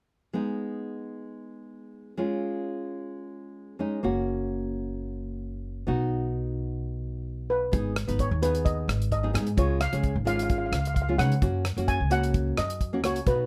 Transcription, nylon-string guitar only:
0.33 G#3 B3 D#4
2.17 G#3 C#4 F4
3.79 G#3 C#4 D#4
4.03 A#3 C#4 F#4
5.87 B3 D#4 F#4
7.72 B3 D#4 G#4
8.07 B3 D#4 B4
8.42 B3 D#4 G#4
9.23 B3 D#4 G#4
9.33 B3 D#4 G#4
9.57 G#3 C#4 F4
9.92 G#3 C#4 G#4
10.25 G#3 C#4 F4
11.09 G#3 C#4 F4
11.18 G#3 C#4 D#4
11.42 A#3 C#4 F#4
11.77 A#3 C#4 F#4
12.10 A#3 C#4 F#4
12.93 A#3 C#4 F#4
13.04 A#3 C#4 F#4
13.27 B3 D#4 F#4

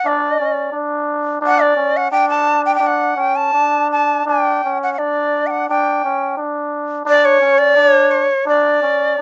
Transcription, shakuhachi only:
0.07 D5
1.46 F#5
1.62 D5
1.97 F#5
2.12 G5
2.29 A5
2.66 G5
2.75 G5
2.87 F#5
3.20 G5
3.36 A5
3.92 A5
4.28 G5
4.83 F#5
4.94 F#5
4.99 D5
5.47 F#5 G5
5.70 G5
7.08 D5
7.25 C#5
7.58 D5
7.89 C#5
8.11 C#5
8.49 D5

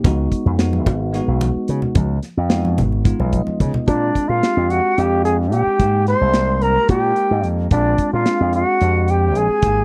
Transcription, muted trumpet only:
3.87 D4
4.28 F4
4.70 F#4
4.97 G4
5.25 G#4
5.52 G4
6.08 C5
6.62 A#4
6.90 G4
7.72 D4
8.13 F4
8.56 F#4
9.10 G4
9.37 G#4

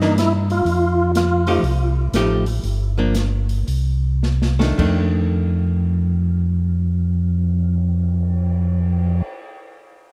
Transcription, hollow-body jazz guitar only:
0.02 E3 A#3 D4
1.47 F3 A3 D#4 G4
2.15 F3 A3 D#4 G4
2.98 F3 A#3 D4
4.59 D#3 A3 D4
4.78 D#3 A3 D4

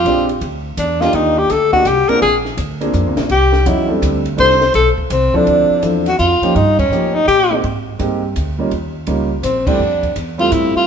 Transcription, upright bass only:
0.05 A#1
0.41 D2
0.77 E2
1.13 D#2
1.50 D2
1.85 C2
2.08 muted upright bass stroke
2.22 A#1
2.57 D2
2.94 F2
3.07 D2
3.18 A#1
3.30 C2
3.66 E2
4.02 D2
4.38 C2
4.74 B1
4.98 muted upright bass stroke
5.10 C2
5.47 D2
5.70 muted upright bass stroke
5.83 E2
6.19 F2
6.41 muted upright bass stroke
6.55 G2
6.90 A2
7.28 A#2
7.63 G#2
7.99 G2
8.36 D2
8.72 D#2
9.07 C#2
9.43 A#1
9.78 F2
10.16 E2
10.51 A2
10.75 muted upright bass stroke

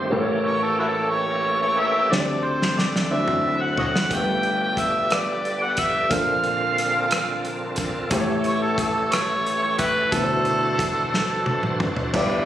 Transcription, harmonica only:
0.46 C#5
0.63 A4
0.79 E4 F#4 A4
1.10 C#5
1.62 C#5
1.79 E5
2.12 D5
2.45 C5
2.79 D5
3.12 E5
3.62 F#5
3.79 C#5 D#5 F#5
4.14 G5
4.63 G5
4.80 E5
5.13 D5
5.63 F#5
5.79 E5
6.13 F5
8.47 C#5
8.62 A4
8.79 A4
9.13 C#5
9.63 C#5
9.79 E4 G4 B4
10.13 A4

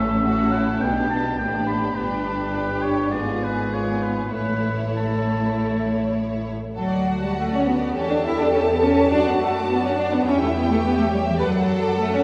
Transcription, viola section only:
Already playing: C#4
0.25 C#4
0.82 B3
1.97 B3
2.26 D4
3.12 B3
3.73 B3
4.33 A3
7.95 A4
9.12 F#4
9.69 D4
10.27 E4
10.84 G4
11.39 B4
11.69 A4

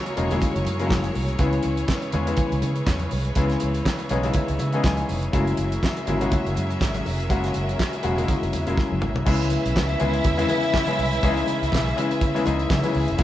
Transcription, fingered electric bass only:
0.18 E1
0.56 F#1
0.65 F#2
0.91 F#1
1.16 C2
1.39 C#2
1.65 C#2
2.14 E2
2.52 C#2
2.62 C#3
2.87 E2
3.12 C2
3.36 C#2
3.63 C#2
4.11 B1
4.49 C#2
4.60 C#3
4.84 C#2
5.10 F1
5.34 F#1
5.58 F#1
6.08 G#1
6.46 F#1
6.57 F#2
6.81 G#1
7.07 F1
7.31 F#1
7.56 F#1
8.05 E1
8.42 F#1
8.54 E2
8.67 E1
8.92 F#1
9.02 G#1
9.15 C2
9.27 C#2
9.66 B1
9.76 C#2
10.01 C#2
10.25 E2
10.99 C2
11.23 C#2
11.62 C#2
11.74 B1
12.47 C#2
12.70 C#3
12.95 C#2
13.09 F1
13.19 F#1

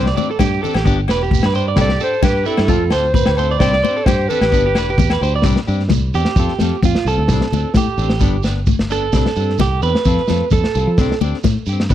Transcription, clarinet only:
Already playing: C5
1.81 D5
2.03 C5
2.24 B4
2.46 A4
2.93 C5
3.37 C5
3.59 D5
4.05 C5
4.28 B4

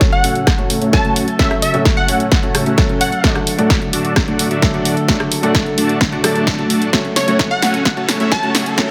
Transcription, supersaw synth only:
Already playing: A3 C#4 F#4 C#5 F#5
0.24 A3 C#4 F#4 C#5 G#5
0.58 A3 C#4 F#4 C#5 A5
0.82 A3 C#4 F#4 C#5 E5
1.05 A3 C#4 F#4 C#5 F#5
1.39 A3 C#4 F#4 C#5 F#5
1.74 A3 C#4 F#4 C#5 F#5
2.09 A3 C#4 F#4 C#5 G#5
2.43 A3 C#4 F#4 C#5 A5
2.66 A3 C#4 F#4 C#5 E5
2.89 A3 C#4 F#4 C#5 F#5
3.24 A3 D4 F#4 D5 F#5
3.58 A3 D4 F#4 D5 F#5
3.93 A3 D4 F#4 D5 A5
4.28 A3 D4 F#4 D5 F#5
4.51 A3 D4 F#4 D5 E5
4.74 A3 D4 F#4 D5 F#5
5.08 A3 D4 F#4 D5 F#5
5.43 A3 D4 F#4 D5 F#5
5.78 A3 D4 F#4 D5 A5
6.12 A3 D4 F#4 D5 F#5
6.24 A3 D4 F#4 D5 A5
6.58 A3 D4 F#4 D5 A5
6.93 A3 C#4 F#4 C#5 F#5
7.28 A3 C#4 F#4 C#5 F#5
7.62 A3 C#4 F#4 C#5 G#5
7.97 A3 C#4 F#4 C#5 A5
8.20 A3 C#4 F#4 C#5 E5
8.43 A3 C#4 F#4 C#5 F#5
8.78 A3 C#4 F#4 C#5 F#5

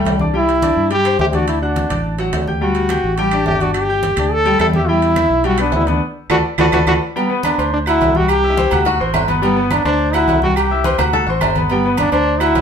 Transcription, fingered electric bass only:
0.05 C2
0.76 G2
1.19 D2
1.90 A1
2.33 D2
3.04 A1
3.46 G1
4.17 D2
4.59 E2
5.30 B1
5.73 D2
6.30 D2
6.58 D2
6.72 D2
6.86 D2
7.58 D2
8.01 C2
8.72 D2
9.01 A1
9.14 G1
9.85 D2
10.27 C2
10.98 D2
11.27 A1
11.41 G1
12.12 D2
12.55 C2

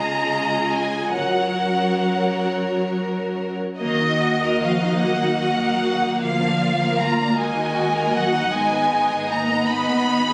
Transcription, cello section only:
Already playing: C#3
1.16 F#2
3.79 D#3
4.62 F3
5.03 F#3
6.21 F3
7.00 A#3
7.38 G#3
8.15 F#3
8.54 G#3
9.31 A#3
9.69 B3

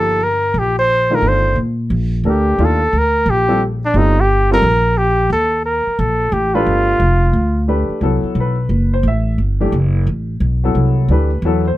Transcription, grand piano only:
Already playing: F3 A#3 D#4 G4
1.10 D#3 A3 D4 F4
2.25 D4 G4 A4 A#4
2.59 D#3 A3 D4 F4
3.48 G3 C4 F4 A4
3.95 G3 C4 F4 A4
4.51 G3 C4 F4 A4
6.54 A3 D4 G4 B4
7.68 A3 D4 G4 B4
8.02 F#3 B3 E4 A4
8.40 B4
8.94 C5
9.08 E5
9.61 E3 A3 D4 G4
10.64 F#3 B3 E4 A4
11.10 E3 A3 D4 G4 B4
11.45 F#3 B3 E4 A4
11.68 C5

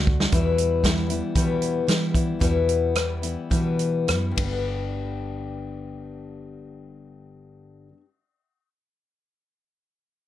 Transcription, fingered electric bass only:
Already playing: D2
0.33 E2
1.36 E3
1.88 E3
2.41 E2
3.51 E3
4.08 F#2
4.37 G1

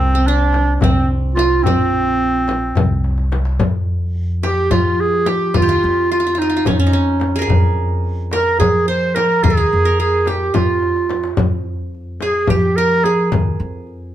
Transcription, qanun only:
Already playing: C4 F4 G#4 A#4
0.15 C4
0.28 D4
0.84 C4
1.39 F4
1.67 C4
4.43 G4
4.71 F4
5.26 G4
5.54 F4
5.62 G4
5.69 F4
6.11 F4
6.20 F4
6.27 F4
6.35 F4
6.42 F4
6.49 F4
6.56 F4
6.67 C#4
6.80 C#4
6.87 D#4
6.93 C#4
7.36 G#4 A#4
7.42 G#4
8.33 A#4
8.60 G#4
8.88 C5
9.16 A#4
9.44 G#4
9.50 A#4
9.57 G#4
9.85 A#4
10.00 G#4
10.27 G4
10.54 F4
12.22 G#4
12.50 G4
12.78 A#4
13.05 G#4

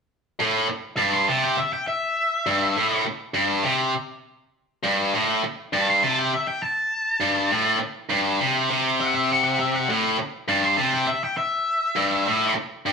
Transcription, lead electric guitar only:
0.97 A5
1.13 C6
1.29 A5
1.44 G5
1.58 E5
1.73 G5
1.88 E5
5.74 A5
5.90 C6
6.03 A5
6.18 G5
6.34 E5
6.47 G5
6.62 A5
9.01 F#5
9.15 E5
9.32 F#5
9.44 F#5
9.60 E5
9.75 F#5
10.50 A5
10.64 C6
10.77 A5
10.93 G5
11.07 E5
11.24 G5
11.37 E5

